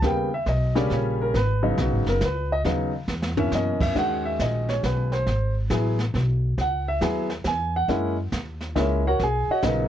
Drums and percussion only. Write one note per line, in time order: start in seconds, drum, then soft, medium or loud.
0.02 brush sweep soft
0.02 kick soft
0.02 snare soft
0.46 kick soft
0.46 snare medium
0.46 hi-hat pedal soft
0.75 snare soft
0.90 kick soft
0.90 snare soft
1.34 brush sweep soft
1.34 kick soft
1.34 snare soft
1.77 kick soft
1.77 snare medium
1.77 hi-hat pedal medium
2.06 snare soft
2.21 kick soft
2.21 snare medium
2.21 hi-hat pedal medium
2.65 brush sweep soft
2.65 kick soft
2.65 snare soft
3.08 snare soft
3.22 snare medium
3.37 floor tom medium
3.52 snare medium
3.52 hi-hat pedal soft
3.81 kick medium
3.81 crash medium
3.96 brush sweep soft
3.96 kick soft
3.96 snare soft
4.39 kick soft
4.39 snare medium
4.39 hi-hat pedal medium
4.69 snare soft
4.83 kick soft
4.83 snare medium
4.83 hi-hat pedal soft
5.12 snare soft
5.27 brush sweep soft
5.27 kick soft
5.27 snare soft
5.70 kick soft
5.70 snare medium
5.70 hi-hat pedal medium
5.99 snare soft
6.14 kick soft
6.14 snare soft
6.58 brush sweep soft
6.58 kick soft
6.58 snare soft
7.01 kick soft
7.01 snare medium
7.01 hi-hat pedal soft
7.30 snare soft
7.44 kick soft
7.44 snare medium
7.44 hi-hat pedal soft
7.88 brush sweep soft
7.88 kick soft
7.88 snare soft
8.32 kick soft
8.32 snare medium
8.32 hi-hat pedal medium
8.61 snare soft
8.76 kick soft
8.76 snare soft
9.19 brush sweep soft
9.19 kick soft
9.19 snare soft
9.62 kick soft
9.62 snare medium
9.62 hi-hat pedal medium